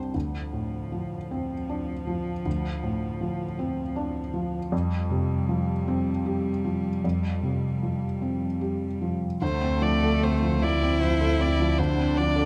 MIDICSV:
0, 0, Header, 1, 5, 480
1, 0, Start_track
1, 0, Tempo, 765306
1, 90, Time_signature, 6, 3, 24, 8
1, 3927, Tempo, 791557
1, 6807, Tempo, 770218
1, 7707, End_track
2, 0, Start_track
2, 0, Title_t, "Violin"
2, 0, Program_c, 0, 40
2, 5846, Note_on_c, 0, 72, 54
2, 6084, Note_on_c, 0, 74, 54
2, 6093, Note_off_c, 0, 72, 0
2, 6335, Note_on_c, 0, 72, 44
2, 6344, Note_off_c, 0, 74, 0
2, 6576, Note_on_c, 0, 74, 45
2, 6585, Note_off_c, 0, 72, 0
2, 6811, Note_off_c, 0, 74, 0
2, 6818, Note_on_c, 0, 72, 52
2, 7058, Note_on_c, 0, 74, 44
2, 7067, Note_off_c, 0, 72, 0
2, 7288, Note_on_c, 0, 72, 50
2, 7298, Note_off_c, 0, 74, 0
2, 7533, Note_on_c, 0, 74, 49
2, 7542, Note_off_c, 0, 72, 0
2, 7707, Note_off_c, 0, 74, 0
2, 7707, End_track
3, 0, Start_track
3, 0, Title_t, "Cello"
3, 0, Program_c, 1, 42
3, 96, Note_on_c, 1, 53, 33
3, 2942, Note_off_c, 1, 53, 0
3, 2963, Note_on_c, 1, 55, 53
3, 5687, Note_off_c, 1, 55, 0
3, 5845, Note_on_c, 1, 57, 86
3, 6570, Note_on_c, 1, 64, 82
3, 6579, Note_off_c, 1, 57, 0
3, 7286, Note_on_c, 1, 62, 78
3, 7295, Note_off_c, 1, 64, 0
3, 7707, Note_off_c, 1, 62, 0
3, 7707, End_track
4, 0, Start_track
4, 0, Title_t, "Felt piano"
4, 0, Program_c, 2, 0
4, 0, Control_c, 2, 64, 127
4, 0, Note_on_c, 2, 36, 46
4, 0, Note_on_c, 2, 43, 37
4, 0, Note_on_c, 2, 55, 35
4, 0, Note_on_c, 2, 60, 32
4, 0, Note_on_c, 2, 62, 37
4, 65, Note_off_c, 2, 60, 0
4, 66, Note_off_c, 2, 62, 0
4, 68, Note_off_c, 2, 36, 0
4, 89, Note_on_c, 2, 38, 34
4, 102, Control_c, 2, 64, 0
4, 107, Note_off_c, 2, 43, 0
4, 108, Note_off_c, 2, 55, 0
4, 206, Control_c, 2, 64, 127
4, 332, Note_on_c, 2, 45, 25
4, 577, Note_on_c, 2, 53, 25
4, 724, Note_off_c, 2, 45, 0
4, 822, Note_on_c, 2, 60, 30
4, 965, Note_off_c, 2, 53, 0
4, 1062, Note_on_c, 2, 62, 31
4, 1205, Note_off_c, 2, 60, 0
4, 1299, Note_on_c, 2, 53, 30
4, 1445, Note_off_c, 2, 62, 0
4, 1516, Note_off_c, 2, 38, 0
4, 1540, Note_on_c, 2, 38, 36
4, 1553, Control_c, 2, 64, 0
4, 1652, Control_c, 2, 64, 127
4, 1684, Note_off_c, 2, 53, 0
4, 1776, Note_on_c, 2, 45, 32
4, 2012, Note_on_c, 2, 53, 29
4, 2156, Note_off_c, 2, 45, 0
4, 2251, Note_on_c, 2, 60, 37
4, 2392, Note_off_c, 2, 53, 0
4, 2484, Note_on_c, 2, 62, 40
4, 2630, Note_off_c, 2, 60, 0
4, 2719, Note_on_c, 2, 53, 38
4, 2867, Note_off_c, 2, 62, 0
4, 2939, Note_off_c, 2, 38, 0
4, 2961, Note_off_c, 2, 53, 0
4, 2962, Note_on_c, 2, 41, 54
4, 2975, Control_c, 2, 64, 0
4, 3066, Control_c, 2, 64, 127
4, 3201, Note_on_c, 2, 48, 40
4, 3442, Note_on_c, 2, 53, 41
4, 3587, Note_off_c, 2, 48, 0
4, 3686, Note_on_c, 2, 60, 43
4, 3828, Note_off_c, 2, 53, 0
4, 3925, Note_on_c, 2, 67, 43
4, 4069, Note_off_c, 2, 60, 0
4, 4161, Note_on_c, 2, 53, 33
4, 4304, Note_off_c, 2, 67, 0
4, 4374, Note_off_c, 2, 41, 0
4, 4402, Note_on_c, 2, 41, 41
4, 4409, Control_c, 2, 64, 0
4, 4506, Control_c, 2, 64, 127
4, 4541, Note_off_c, 2, 53, 0
4, 4635, Note_on_c, 2, 48, 30
4, 4878, Note_on_c, 2, 53, 27
4, 5017, Note_off_c, 2, 48, 0
4, 5113, Note_on_c, 2, 60, 31
4, 5259, Note_off_c, 2, 53, 0
4, 5352, Note_on_c, 2, 67, 33
4, 5498, Note_off_c, 2, 60, 0
4, 5596, Note_on_c, 2, 53, 26
4, 5741, Note_off_c, 2, 67, 0
4, 5815, Note_off_c, 2, 41, 0
4, 5838, Note_off_c, 2, 53, 0
4, 5841, Note_on_c, 2, 38, 53
4, 5849, Control_c, 2, 64, 0
4, 5936, Control_c, 2, 64, 127
4, 5960, Note_on_c, 2, 60, 45
4, 6083, Note_on_c, 2, 53, 39
4, 6155, Note_off_c, 2, 60, 0
4, 6207, Note_on_c, 2, 69, 48
4, 6279, Note_off_c, 2, 53, 0
4, 6327, Note_on_c, 2, 60, 39
4, 6403, Note_off_c, 2, 69, 0
4, 6452, Note_on_c, 2, 53, 43
4, 6523, Note_off_c, 2, 60, 0
4, 6695, Note_on_c, 2, 60, 51
4, 6799, Note_off_c, 2, 53, 0
4, 6808, Note_on_c, 2, 53, 41
4, 6883, Note_off_c, 2, 60, 0
4, 6932, Note_on_c, 2, 69, 48
4, 7001, Note_off_c, 2, 53, 0
4, 7054, Note_on_c, 2, 60, 45
4, 7122, Note_off_c, 2, 69, 0
4, 7172, Note_on_c, 2, 53, 42
4, 7243, Note_off_c, 2, 60, 0
4, 7265, Note_off_c, 2, 38, 0
4, 7294, Note_on_c, 2, 38, 55
4, 7298, Control_c, 2, 64, 0
4, 7362, Note_off_c, 2, 53, 0
4, 7407, Control_c, 2, 64, 127
4, 7410, Note_on_c, 2, 60, 41
4, 7536, Note_on_c, 2, 53, 43
4, 7601, Note_off_c, 2, 60, 0
4, 7647, Note_on_c, 2, 69, 47
4, 7707, Note_off_c, 2, 38, 0
4, 7707, Note_off_c, 2, 53, 0
4, 7707, Note_off_c, 2, 69, 0
4, 7707, End_track
5, 0, Start_track
5, 0, Title_t, "Double bass"
5, 0, Program_c, 3, 43
5, 5840, Note_on_c, 3, 38, 52
5, 7707, Note_off_c, 3, 38, 0
5, 7707, End_track
0, 0, End_of_file